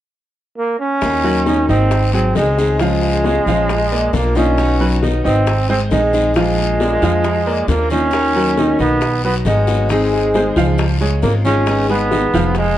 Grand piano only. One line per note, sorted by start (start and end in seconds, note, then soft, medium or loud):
1.24 1.43 F#3 medium
1.24 1.43 F#4 medium
1.24 1.43 A#4 medium
1.47 1.65 D#3 medium
1.47 1.65 D#4 medium
1.47 1.65 D#5 medium
1.69 2.06 D#3 medium
1.69 2.06 D#4 medium
1.69 2.06 D#5 medium
2.13 2.32 F#3 medium
2.13 2.32 F#4 medium
2.13 2.32 G#4 medium
2.36 2.72 D#3 medium
2.36 2.72 D#4 medium
2.36 2.73 D#5 medium
2.80 3.17 F3 medium
2.80 3.17 F4 medium
2.80 3.17 F5 medium
3.25 3.43 G#3 medium
3.25 3.43 G#4 medium
3.25 3.44 C#5 medium
3.47 3.84 F3 medium
3.47 3.84 F4 medium
3.47 3.84 F5 medium
3.92 4.28 A#3 medium
3.92 4.29 A#4 medium
3.92 4.29 D5 medium
4.36 4.73 D#3 medium
4.36 4.73 D#4 medium
4.36 4.73 D#5 medium
4.80 4.99 F#3 medium
4.80 4.99 F#4 medium
4.80 4.99 B4 medium
5.03 5.21 D#3 medium
5.03 5.21 D#4 medium
5.03 5.21 D#5 medium
5.24 5.61 D#3 medium
5.24 5.61 D#4 medium
5.24 5.61 D#5 medium
5.69 5.87 G#3 medium
5.69 5.88 G#4 medium
5.69 5.88 C5 medium
5.92 6.28 D#3 medium
5.92 6.28 D#4 medium
5.92 6.28 D#5 medium
6.36 6.72 F3 medium
6.36 6.72 F4 medium
6.36 6.72 F5 medium
6.81 6.99 A#3 medium
6.81 6.99 A#4 medium
6.81 6.99 D5 medium
7.02 7.39 F3 medium
7.02 7.39 F4 medium
7.02 7.39 F5 medium
7.47 7.83 A#3 medium
7.47 7.83 A#4 medium
7.47 7.83 D5 medium
7.91 8.28 D#3 medium
7.91 8.28 D#4 medium
7.91 8.28 D#5 medium
8.36 8.54 F#3 medium
8.36 8.54 F#4 medium
8.36 8.54 A#4 medium
8.58 8.76 D#3 medium
8.58 8.76 D#4 medium
8.58 8.76 D#5 medium
8.80 9.16 D#3 medium
8.80 9.16 D#4 medium
8.80 9.16 D#5 medium
9.24 9.42 F#3 medium
9.24 9.42 F#4 medium
9.24 9.42 B4 medium
9.46 9.82 D#3 medium
9.46 9.83 D#4 medium
9.46 9.83 D#5 medium
9.90 10.27 D#3 medium
9.90 10.27 D#4 medium
9.90 10.27 D#5 medium
10.35 10.53 G#3 medium
10.35 10.53 G#4 medium
10.35 10.53 C5 medium
10.56 10.93 F3 medium
10.56 10.93 F4 medium
10.56 10.93 F5 medium
11.01 11.37 G#3 medium
11.01 11.37 G#4 medium
11.01 11.37 C#5 medium
11.45 11.82 D#3 medium
11.45 11.82 D#4 medium
11.45 11.82 D#5 medium
11.89 12.08 G#3 medium
11.89 12.08 G#4 medium
11.89 12.08 B4 medium
12.11 12.30 D#3 medium
12.11 12.30 D#4 medium
12.11 12.30 D#5 medium
12.34 12.70 F3 medium
12.34 12.70 F4 medium
12.34 12.71 F5 medium